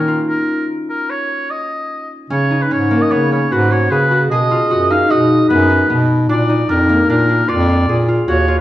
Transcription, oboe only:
Already playing: A#4
0.29 A#4
0.90 A#4
1.10 C#5
1.51 D#5
2.32 C#5
2.62 B4
2.72 C#5
3.02 D#5
3.11 C#5
3.32 C#5
3.52 B4
3.72 C#5
3.91 B4
4.31 D#5
4.91 F5
5.10 D#5
5.49 B4
6.30 D5
6.69 A#4
7.09 A#4
7.49 D5
8.28 C#5

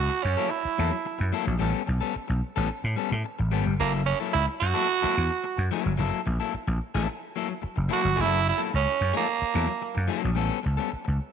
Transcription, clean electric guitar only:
0.09 muted clean electric guitar stroke
0.37 F#3 A#3 E4 A4
0.51 muted clean electric guitar stroke
0.78 F#3 A#3 E4 A4
0.92 muted clean electric guitar stroke
1.05 muted clean electric guitar stroke
1.19 muted clean electric guitar stroke
1.33 F#3 A#3 E4 A4
1.46 muted clean electric guitar stroke
1.59 G3 B3 C#4 A4
1.87 muted clean electric guitar stroke
2.01 G3 B3 C#4 A4
2.15 muted clean electric guitar stroke
2.28 muted clean electric guitar stroke
2.56 G3 B3 C#4 A4
2.69 muted clean electric guitar stroke
2.96 G3 B3 C#4 A4
3.11 muted clean electric guitar stroke
3.24 muted clean electric guitar stroke
3.39 muted clean electric guitar stroke
3.52 G3 B3 C#4 A4
3.65 muted clean electric guitar stroke
3.80 F#3 A#3 E4 A4
4.07 muted clean electric guitar stroke
4.20 F#3 A#3 E4 A4
4.47 muted clean electric guitar stroke
4.74 F#3 A#3 E4 A4
4.88 muted clean electric guitar stroke
5.02 F#3 A#3 E4 A4
5.16 muted clean electric guitar stroke
5.30 muted clean electric guitar stroke
5.44 muted clean electric guitar stroke
5.57 muted clean electric guitar stroke
5.71 F#3 A#3 E4 A4
5.84 muted clean electric guitar stroke
5.98 F#3 A#3 E4 A4
6.26 muted clean electric guitar stroke
6.40 F#3 A#3 E4 A4
6.54 muted clean electric guitar stroke
6.68 muted clean electric guitar stroke
6.94 F#3 A#3 E4 A4
7.08 muted clean electric guitar stroke
7.36 F#3 A#3 E4 A4
7.49 muted clean electric guitar stroke
7.62 muted clean electric guitar stroke
7.76 muted clean electric guitar stroke
7.89 F#3 A#3 E4 A4
8.03 muted clean electric guitar stroke
8.16 F#3 A#3 E4 A4
8.44 muted clean electric guitar stroke
8.58 F#3 A#3 E4 A4
8.72 muted clean electric guitar stroke
8.86 muted clean electric guitar stroke
9.13 F#3 A#3 E4 A4
9.28 muted clean electric guitar stroke
9.54 F#3 A#3 E4 A4
9.68 muted clean electric guitar stroke
9.82 muted clean electric guitar stroke
9.95 muted clean electric guitar stroke
10.08 F#3 A#3 E4 A4
10.22 muted clean electric guitar stroke
10.35 G3 B3 C#4 A4
10.63 muted clean electric guitar stroke
10.77 G3 B3 C#4 A4
10.91 muted clean electric guitar stroke
11.05 muted clean electric guitar stroke

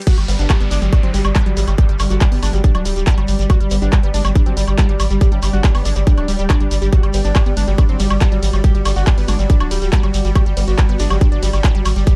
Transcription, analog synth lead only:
0.07 F#4
0.18 G3
0.28 G3
0.39 D4
0.50 G3
0.60 G3
0.71 D4
0.82 G3
0.93 G3
1.03 C4
1.14 G3
1.25 G3
1.46 G3
1.57 G3
1.68 G3
1.78 G4
1.89 G3
2.00 G3
2.10 F#4
2.21 G3
2.32 G3
2.43 D4
2.53 G3
2.64 G3
2.75 D4
2.85 G3
2.96 G3
3.18 G3
3.28 G3
3.39 G3
3.50 F#4
3.60 G3
3.71 G3
3.82 D4
3.93 G3
4.03 G3
4.14 D4
4.25 G3
4.35 G3
4.46 C4
4.57 G3
4.68 G3
4.89 G3
5.00 G3
5.10 G3
5.21 G4
5.32 G3
5.43 G3
5.53 F#4
5.64 G3
5.75 G3
5.85 D4
5.96 G3
6.07 G3
6.18 D4
6.28 G3
6.39 G3
6.60 G3
6.71 G3
6.82 G3
6.93 F#4
7.03 G3
7.14 G3
7.25 D4
7.35 G3
7.46 G3
7.57 D4
7.68 G3
7.78 G3
7.89 C4
8.00 G3
8.10 G3
8.32 G3
8.43 G3
8.53 G3
8.64 G4
8.75 G3
8.85 G3
8.96 F#4
9.07 G3
9.18 G3
9.28 D4
9.39 G3
9.50 G3
9.60 D4
9.71 G3
9.82 G3
10.03 G3
10.14 G3
10.25 G3
10.35 G4
10.46 G3
10.57 G3
10.68 F#4
10.78 G3
10.89 G3
11.00 D4
11.10 G3
11.21 G3
11.32 D4
11.43 G3
11.53 G3
11.75 G3
11.85 G3
11.96 G3
12.07 G4

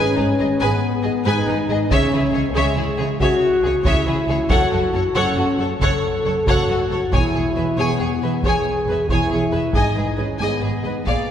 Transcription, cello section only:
0.17 G#2
0.41 G#2
0.61 G#2
1.05 G#2
1.26 G#2
1.49 G#2
1.70 G#2
1.90 C#3
2.12 C#3
2.34 C#3
2.56 C#3
2.77 C#3
2.99 C#3
3.21 C#3
3.65 C#3
3.86 C#3
4.07 C#3
4.29 C#3
4.50 F#2
4.72 F#2
4.93 F#2
5.16 F#2
5.36 F#2
5.58 F#2
5.82 F#2
6.26 F#2
6.47 F#2
6.69 F#2
6.91 F#2
7.13 E2
7.35 E2
7.56 E2
7.79 E2
8.01 E2
8.23 E2
8.45 E2
8.88 E2
9.10 E2
9.32 E2
9.52 E2
9.74 G#2
9.97 G#2
10.18 G#2
10.40 G#2
10.62 G#2
10.84 G#2
11.07 A#2

